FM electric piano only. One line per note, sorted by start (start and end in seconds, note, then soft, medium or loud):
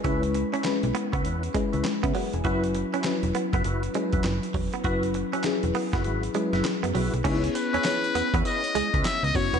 0.00 0.04 G#3 medium
0.00 0.05 C#4 medium
0.00 0.05 E4 medium
0.00 2.15 A#4 medium
0.00 0.05 B4 medium
0.04 0.54 G#3 medium
0.04 0.54 C#4 medium
0.04 0.54 E4 medium
0.04 0.55 B4 loud
0.64 1.36 G#3 medium
0.64 1.36 C#4 medium
0.64 1.36 E4 medium
0.64 1.36 B4 loud
1.54 2.26 G#3 medium
1.54 2.26 C#4 medium
1.54 2.26 E4 medium
1.54 1.85 B4 medium
2.04 2.15 G#4 medium
2.04 2.14 E5 medium
2.15 2.33 A#4 medium
2.15 2.32 F#5 medium
2.34 2.45 B4 medium
2.34 2.62 G#5 medium
2.45 2.94 F#3 medium
2.45 2.94 C#4 medium
2.45 2.95 E4 medium
2.45 2.95 B4 loud
3.05 3.76 F#3 medium
3.05 3.76 C#4 medium
3.05 3.76 E4 medium
3.05 3.77 B4 medium
3.94 4.66 F#3 medium
3.94 4.66 C#4 medium
3.94 4.66 E4 medium
3.94 4.66 B4 loud
4.84 5.34 F#3 medium
4.84 5.34 C#4 medium
4.84 5.34 E4 medium
4.84 5.35 B4 loud
5.44 6.15 F#3 medium
5.44 6.16 C#4 medium
5.44 6.16 E4 medium
5.44 6.16 G#4 medium
6.34 7.06 F#3 medium
6.34 7.06 C#4 medium
6.34 7.06 E4 medium
6.34 7.06 B4 medium
7.25 7.74 B3 medium
7.25 7.74 C#4 medium
7.25 7.33 D#4 medium
7.25 7.75 G#4 medium
7.25 7.75 C#5 loud
7.32 7.78 E4 medium
7.85 8.77 B3 medium
7.85 8.77 C#4 medium
7.85 8.77 E4 medium
7.85 8.78 G#4 medium
7.85 8.78 C#5 medium
9.35 9.60 B3 medium
9.35 9.60 C#4 medium
9.35 9.60 E4 medium
9.35 9.60 F#4 medium
9.35 9.60 C#5 medium